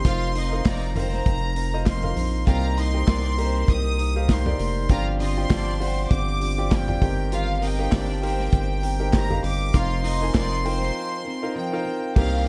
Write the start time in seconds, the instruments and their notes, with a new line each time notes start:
Already playing: violin section C6
0.04 analog synth bass F1, steel-string acoustic guitar F3 C4 D#4 A#4, grand piano D#4 F4 A#4 C5 F5, violin section F4 F5, kick, hi-hat pedal, open hi-hat
0.35 steel-string acoustic guitar C4 D#4 A#4, violin section D#4 D#5, hi-hat pedal, open hi-hat
0.52 grand piano D#4 F4 A#4 C5 F5
0.65 analog synth bass F1, steel-string acoustic guitar F3 C4 D#4 A#4, violin section D#4 D5 A#5, kick, snare, clap, hi-hat pedal, open hi-hat
0.96 violin section C4 C5 A#5, grand piano D#4 F4 A#4 C5 F5, floor tom, hi-hat pedal, open hi-hat
1.13 snare
1.26 analog synth bass F1, kick, hi-hat pedal, open hi-hat
1.56 steel-string acoustic guitar C4 D#4 A#4, hi-hat pedal, open hi-hat
1.73 grand piano D#4 F4 A#4 C5 D#5
1.86 steel-string acoustic guitar F3 C4 D#4 A#4, violin section C6, kick, snare, clap, hi-hat pedal, open hi-hat
2.03 grand piano D#4 F4 A#4 C5 F5, floor tom
2.16 analog synth bass A#1, steel-string acoustic guitar C4 D#4 A#4, hi-hat pedal, open hi-hat
2.46 analog synth bass C2, steel-string acoustic guitar C3 G3 A#3 D#4 A#4, grand piano C3 D#4 G4 A#4 C5 G5, violin section F4 F5 A#5, kick, hi-hat pedal, open hi-hat
2.77 steel-string acoustic guitar A#3 D#4 A#4, violin section D#4 D#5 C6, hi-hat pedal, open hi-hat
2.94 grand piano D#4 G4 A#4 C5 G5
3.07 analog synth bass C2, steel-string acoustic guitar G3 A#3 D#4 A#4, violin section D#4 D5, kick, snare, clap, hi-hat pedal, open hi-hat
3.38 violin section C4 C5, grand piano D#4 G4 A#4 C5 A#5, hi-hat pedal, open hi-hat
3.68 analog synth bass C2, violin section D#6, kick, hi-hat pedal, open hi-hat
3.99 steel-string acoustic guitar A#3 D#4 A#4, hi-hat pedal, open hi-hat
4.15 grand piano D#4 G4 A#4 C5 F5
4.29 steel-string acoustic guitar G3 A#3 D#4 A#4, violin section C6, kick, snare, clap, hi-hat pedal, open hi-hat
4.46 grand piano D#4 G4 A#4 C5 D5, floor tom
4.59 analog synth bass F1, steel-string acoustic guitar A#3 D#4 A#4, hi-hat pedal, open hi-hat
4.89 analog synth bass G1, steel-string acoustic guitar G2 D3 F3 C4 D4 G4, grand piano G2 F4 G4 C5 D5 G5, violin section F4 F5 A#5, kick, hi-hat pedal, open hi-hat
5.19 steel-string acoustic guitar F3 C4 D4 G4, violin section F4 D#5 C6, hi-hat pedal, open hi-hat
5.37 grand piano F4 G4 C5 D5 G5
5.49 analog synth bass G1, steel-string acoustic guitar F3 C4 D4 G4, violin section D4 D5, kick, snare, clap, hi-hat pedal, open hi-hat
5.80 violin section C4 C5, grand piano F4 G4 C5 D5 F#5, hi-hat pedal, open hi-hat
5.87 grand piano G5
6.11 analog synth bass G1, violin section D6, kick, hi-hat pedal, open hi-hat
6.40 steel-string acoustic guitar F3 C4 D4 G4, hi-hat pedal, open hi-hat
6.58 grand piano F4 G4 C5 D5 G5
6.71 steel-string acoustic guitar F3 C4 D4 G4, violin section G5, kick, snare, clap, hi-hat pedal, open hi-hat
6.88 grand piano F4 G4 C5 D5 G5, floor tom
7.01 analog synth bass G1, grand piano G2 D#4 G4 A#4 C5 G5, steel-string acoustic guitar G3 C4 G4 A#4, kick, hi-hat pedal, open hi-hat
7.32 steel-string acoustic guitar G2 D#3 G3 C4 G4 A#4, violin section F4 F5, hi-hat pedal, open hi-hat
7.61 steel-string acoustic guitar G3 C4 G4 A#4, violin section D#4 D#5 G5, hi-hat pedal, open hi-hat
7.79 grand piano D#4 G4 A#4 C5 F5
7.91 analog synth bass G1, steel-string acoustic guitar G3 C4 G4 A#4, violin section D4 D5, kick, snare, clap, hi-hat pedal, open hi-hat
8.22 violin section C4 C5 G5, grand piano D#4 G4 A#4 C5 F5, hi-hat pedal, open hi-hat
8.40 snare
8.52 analog synth bass G1, kick, hi-hat pedal, open hi-hat
8.83 steel-string acoustic guitar G3 C4 G4 A#4, hi-hat pedal, open hi-hat
9.00 grand piano D#4 G4 A#4 C5 G5
9.13 steel-string acoustic guitar G3 C4 G4 A#4, violin section A#5, kick, snare, clap, hi-hat pedal, open hi-hat
9.30 grand piano D#4 G4 A#4 C5 F5, floor tom
9.43 analog synth bass G1, steel-string acoustic guitar G3 C4 G4 A#4, violin section D6, hi-hat pedal, open hi-hat
9.74 analog synth bass F1, steel-string acoustic guitar F3 C4 D#4 A#4, grand piano D#4 F4 A#4 C5 F5, violin section F4 F5 C6, kick, hi-hat pedal, open hi-hat
10.04 steel-string acoustic guitar C4 D#4 A#4, violin section D#4 D#5, hi-hat pedal, open hi-hat
10.21 grand piano D#4 F4 A#4 C5 G#5
10.34 analog synth bass F1, steel-string acoustic guitar F3 C4 D#4 A#4, violin section D#4 D5, kick, snare, clap, hi-hat pedal, open hi-hat
10.64 violin section C4 C5, grand piano D#4 F4 A#4 C5 G5, hi-hat pedal, open hi-hat
10.82 snare
11.25 steel-string acoustic guitar C4 D#4 A#4
11.42 grand piano D#4 F4 A#4 C5 F5
11.56 steel-string acoustic guitar F3 C4 D#4 A#4, violin section G5
11.72 grand piano D#4 F4 A#4 C5 F5
11.85 steel-string acoustic guitar C4 D#4 A#4
12.15 analog synth bass C2, grand piano C3 D#4 G4 A#4 C5 G5, steel-string acoustic guitar C3 G3 A#3 D#4 A#4, violin section F5, kick, crash